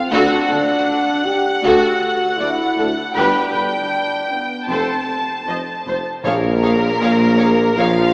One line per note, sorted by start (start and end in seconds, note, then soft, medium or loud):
0.00 0.12 C4 medium
0.11 0.19 D2 medium
0.11 0.27 D2 medium
0.11 0.21 D2 medium
0.11 1.23 D4 loud
0.11 0.47 F#4 medium
0.11 0.48 A4 medium
0.11 3.12 F#5 medium
0.49 0.57 D2 medium
0.49 0.59 D2 medium
0.49 0.66 D2 medium
0.49 0.57 A4 soft
0.49 0.59 A4 soft
1.25 1.63 G4 medium
1.63 1.72 D2 medium
1.63 1.80 D2 medium
1.63 1.73 D2 medium
1.63 2.39 F#4 medium
1.63 1.99 F#4 medium
1.63 2.00 A4 medium
2.37 2.47 D2 soft
2.37 2.48 D2 soft
2.37 2.56 D2 soft
2.37 2.97 E4 medium
2.37 2.47 D5 medium
2.42 2.50 A4 soft
2.78 2.86 D2 soft
2.78 2.94 D2 soft
2.78 2.86 A4 medium
2.78 2.88 A4 soft
3.14 3.24 G1 medium
3.14 3.31 G1 medium
3.14 3.24 G2 medium
3.14 4.28 D4 medium
3.14 3.52 G4 medium
3.14 3.52 B4 medium
3.14 4.71 G5 medium
3.54 3.69 G1 soft
3.54 3.63 G1 soft
3.54 3.62 G2 soft
3.54 3.63 B4 soft
4.30 4.69 B3 medium
4.68 4.77 F1 soft
4.68 4.86 F1 medium
4.68 4.76 F2 medium
4.68 5.47 C4 medium
4.68 5.06 A4 soft
4.68 5.06 C5 soft
4.68 6.02 A5 soft
5.47 5.55 F1 soft
5.47 5.63 F1 soft
5.47 5.55 F2 soft
5.47 5.56 C5 soft
5.47 5.57 D#5 soft
5.86 5.94 F1 soft
5.86 6.02 F1 soft
5.86 5.94 F2 soft
5.86 5.96 C5 soft
6.24 6.92 A#1 medium
6.24 7.35 A#2 medium
6.24 7.74 A#2 medium
6.24 7.74 A#3 medium
6.24 6.34 A#3 medium
6.24 6.34 G#4 medium
6.24 7.74 A#4 medium
6.24 6.33 C#5 medium
6.24 6.33 F5 medium
6.63 6.72 A#3 soft
6.63 6.71 G#4 medium
6.63 6.71 C#5 soft
6.63 6.72 F5 medium
7.01 7.69 A#1 medium
7.01 7.10 A#3 medium
7.01 7.10 G#4 medium
7.01 7.10 C#5 medium
7.01 7.10 F5 medium
7.39 7.48 A#3 medium
7.39 7.49 G#4 medium
7.39 7.47 C#5 medium
7.39 7.47 F5 medium
7.77 8.13 A#1 medium
7.77 8.13 F3 medium
7.77 7.87 A#3 medium
7.77 8.13 F4 loud
7.77 7.86 G#4 medium
7.77 7.86 C#5 medium
7.77 8.13 F5 medium
7.77 7.86 F5 medium